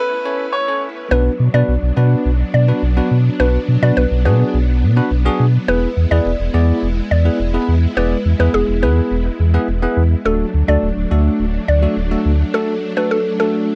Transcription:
Already playing: string machine A3 B3 C#4 E4 B4, grand piano B4
0.25 tine electric piano C#4 A4 C#5
0.52 grand piano C#5
0.68 tine electric piano C#4 A4 C#5
1.11 sub bass B1, string machine F#3 B3 D4, tine electric piano B3 D4 F#4 B4, synth pluck B4
1.40 sub bass B2
1.54 sub bass B2, tine electric piano B3 D4 F#4 B4, synth pluck D5
1.68 sub bass B1
1.83 sub bass B1
1.97 sub bass B2, tine electric piano B3 D4 F#4 B4
2.25 sub bass B1
2.54 sub bass B2, synth pluck D5
2.68 tine electric piano B3 D4 F#4 B4
2.83 sub bass B1
2.97 tine electric piano B3 D4 F#4 B4
3.11 sub bass B2
3.39 sub bass B1, tine electric piano B3 D4 F#4 B4, synth pluck B4
3.68 sub bass B2
3.82 sub bass B2, tine electric piano B3 D4 F#4 B4, synth pluck D5
3.97 sub bass B1, synth pluck B4
4.11 sub bass B1
4.25 sub bass B2, tine electric piano B3 D4 F#4 G#4, synth pluck B4
4.54 sub bass B1
4.83 sub bass B2
4.97 tine electric piano B3 D4 F#4 B4
5.11 sub bass B1
5.25 tine electric piano B3 D4 F#4 G#4
5.40 sub bass B2
5.68 sub bass E1, string machine G#3 E4, tine electric piano B3 E4 G#4 B4, synth pluck B4
5.97 sub bass E2
6.11 sub bass E2, tine electric piano B3 E4 G#4 B4, synth pluck D5
6.25 sub bass E1
6.40 sub bass E1
6.54 sub bass E2, tine electric piano B3 E4 G#4 D5
6.83 sub bass E1
7.11 sub bass E2, synth pluck D5
7.25 tine electric piano B3 E4 G#4 B4
7.40 sub bass E1
7.54 tine electric piano B3 E4 G#4 B4
7.68 sub bass E2
7.97 sub bass E1, tine electric piano B3 E4 G#4 D5, synth pluck B4
8.25 sub bass E2
8.40 sub bass E2, tine electric piano B3 E4 G#4 B4, synth pluck B4
8.54 sub bass E1, synth pluck G#4
8.68 sub bass E1
8.82 sub bass E2, tine electric piano B3 E4 G#4 B4, synth pluck B4
9.11 sub bass E1
9.40 sub bass E2
9.54 tine electric piano B3 E4 G#4 B4
9.68 sub bass E1
9.82 tine electric piano B3 E4 G#4 B4
9.97 sub bass E2
10.25 sub bass D1, string machine F#3 A3 D4, tine electric piano A3 D4 F#4 A4, synth pluck A4
10.54 sub bass D2
10.68 sub bass D2, tine electric piano A3 D4 F#4 A4, synth pluck D5
10.83 sub bass D1
10.97 sub bass D1
11.11 sub bass D2, tine electric piano A3 D4 F#4 A4
11.40 sub bass D1
11.68 sub bass D2, synth pluck D5
11.82 tine electric piano A3 D4 F#4 A4
11.97 sub bass D1
12.11 tine electric piano A3 D4 F#4 A4
12.25 sub bass D2
12.54 tine electric piano A3 D4 F#4 A4, synth pluck A4
12.97 tine electric piano A3 D4 F#4 A4, synth pluck B4
13.11 synth pluck A4
13.39 tine electric piano A3 D4 F#4 A4, synth pluck A4

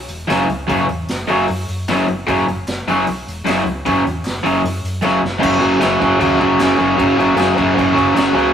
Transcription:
0.08 fingered electric bass E1, open hi-hat
0.28 fingered electric bass F#1, overdriven electric guitar F#2 C#3 F#3, snare, clap, open hi-hat
0.48 fingered electric bass C#2, open hi-hat
0.68 fingered electric bass F#1, overdriven electric guitar F#2 C#3 F#3, kick, open hi-hat
0.89 fingered electric bass E2, open hi-hat
1.08 fingered electric bass F#1, snare, clap, open hi-hat
1.28 fingered electric bass F#1, overdriven electric guitar F#2 C#3 F#3, open hi-hat
1.48 fingered electric bass F#2, open hi-hat
1.68 fingered electric bass F#2, open hi-hat
1.88 fingered electric bass F#1, overdriven electric guitar F#2 C#3 F#3, snare, clap, open hi-hat
2.08 fingered electric bass F#1, open hi-hat
2.27 fingered electric bass F#1, overdriven electric guitar F#2 C#3 F#3, kick, open hi-hat
2.47 fingered electric bass F#1, open hi-hat
2.66 fingered electric bass F#1, snare, clap, open hi-hat
2.87 fingered electric bass F#1, overdriven electric guitar F#2 C#3 F#3, open hi-hat
3.07 fingered electric bass B1, open hi-hat
3.27 fingered electric bass E1, open hi-hat
3.45 fingered electric bass F#1, overdriven electric guitar F#2 C#3 F#3, clap, open hi-hat
3.49 snare
3.65 fingered electric bass C#2, open hi-hat
3.85 fingered electric bass F#1, overdriven electric guitar F#2 C#3 F#3, kick, open hi-hat
4.05 fingered electric bass E2, open hi-hat
4.24 fingered electric bass F#1, snare, clap, open hi-hat
4.43 fingered electric bass F#1, overdriven electric guitar F#2 C#3 F#3, open hi-hat
4.64 fingered electric bass F#2, open hi-hat
4.83 fingered electric bass F#2, open hi-hat
5.02 fingered electric bass F#1, overdriven electric guitar F#2 C#3 F#3, snare, clap
5.23 fingered electric bass F#1, snare
5.39 fingered electric bass F#1, overdriven electric guitar F#2 C#3 F#3, crash
5.43 kick
5.59 fingered electric bass F#1, overdriven electric guitar F#2 C#3 F#3, crash
5.79 fingered electric bass F#1, overdriven electric guitar F#2 C#3 F#3, snare, clap, crash
6.00 fingered electric bass F#1, overdriven electric guitar F#2 C#3 F#3, kick, crash
6.18 fingered electric bass D#2, overdriven electric guitar F#2 C#3 F#3, kick, crash
6.39 fingered electric bass F#1, overdriven electric guitar F#2 C#3 F#3, kick, crash
6.59 fingered electric bass F#1, overdriven electric guitar F#2 C#3 F#3, snare, clap, crash
6.77 fingered electric bass F#1, overdriven electric guitar F#2 C#3 F#3, crash
6.97 fingered electric bass F#1, overdriven electric guitar F#2 C#3 F#3, kick, crash
7.17 fingered electric bass F#1, overdriven electric guitar F#2 C#3 F#3, crash
7.35 fingered electric bass F#1, overdriven electric guitar F#2 C#3 F#3, clap
7.39 snare, crash
7.56 fingered electric bass F#1, overdriven electric guitar F#2 C#3 F#3, kick, crash
7.74 overdriven electric guitar F#2 C#3 F#3
7.78 fingered electric bass F#1, kick, crash
7.93 overdriven electric guitar F#2 C#3 F#3
7.98 fingered electric bass F#1, kick, crash
8.14 fingered electric bass F#1, overdriven electric guitar F#2 C#3 F#3, clap, crash
8.18 snare
8.33 fingered electric bass C#2, overdriven electric guitar F#2 C#3 F#3
8.38 crash

